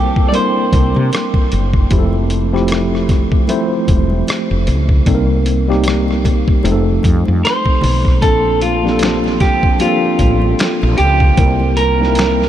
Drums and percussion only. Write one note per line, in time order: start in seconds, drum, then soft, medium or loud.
0.16 kick medium
0.32 closed hi-hat medium
0.32 high conga medium
0.73 kick medium
0.73 closed hi-hat medium
0.73 high conga medium
0.95 high conga medium
1.12 cross-stick loud
1.12 closed hi-hat medium
1.12 muted conga soft
1.34 kick medium
1.34 muted conga soft
1.52 closed hi-hat medium
1.74 kick medium
1.90 kick loud
1.90 closed hi-hat medium
1.90 low conga medium
2.13 muted conga soft
2.30 closed hi-hat medium
2.56 cross-stick soft
2.68 closed hi-hat medium
2.68 muted conga soft
2.72 cross-stick loud
2.95 cross-stick soft
3.09 kick medium
3.09 cross-stick soft
3.09 closed hi-hat medium
3.09 high conga medium
3.09 low conga medium
3.32 kick medium
3.47 closed hi-hat medium
3.47 muted conga soft
3.47 high conga medium
3.88 kick medium
3.88 closed hi-hat medium
3.88 high conga medium
4.10 high conga medium
4.27 cross-stick loud
4.27 closed hi-hat medium
4.27 muted conga soft
4.67 closed hi-hat medium
4.89 kick medium
5.06 kick loud
5.06 closed hi-hat medium
5.06 muted conga soft
5.06 low conga medium
5.46 closed hi-hat medium
5.72 cross-stick soft
5.84 closed hi-hat medium
5.84 muted conga soft
5.88 cross-stick loud
6.08 cross-stick soft
6.08 muted conga soft
6.25 kick medium
6.25 closed hi-hat medium
6.25 high conga medium
6.25 low conga medium
6.48 kick medium
6.63 closed hi-hat medium
6.63 muted conga soft
6.63 high conga medium
7.03 kick medium
7.03 closed hi-hat medium
7.03 high conga medium
7.25 high conga medium
7.45 cross-stick loud
7.45 closed hi-hat medium
7.65 kick medium
7.65 muted conga soft
7.81 open hi-hat soft
7.81 low conga medium
8.05 kick medium
8.05 cross-stick soft
8.22 kick loud
8.22 closed hi-hat medium
8.22 muted conga soft
8.22 low conga medium
8.61 closed hi-hat medium
8.87 snare soft
8.99 finger snap medium
8.99 closed hi-hat medium
8.99 muted conga soft
9.03 snare medium
9.24 snare soft
9.24 muted conga soft
9.40 kick medium
9.40 snare soft
9.40 closed hi-hat medium
9.40 high conga medium
9.40 low conga medium
9.63 kick medium
9.79 closed hi-hat medium
9.79 muted conga soft
9.79 high conga medium
10.19 kick medium
10.19 closed hi-hat medium
10.19 high conga medium
10.42 high conga medium
10.59 finger snap medium
10.59 snare loud
10.59 closed hi-hat medium
10.82 muted conga soft
10.98 closed hi-hat medium
11.20 kick medium
11.37 kick loud
11.37 closed hi-hat medium
11.37 muted conga soft
11.37 low conga medium
11.60 muted conga soft
11.77 closed hi-hat medium
12.03 snare soft
12.15 finger snap medium
12.15 closed hi-hat medium
12.19 snare loud
12.42 snare soft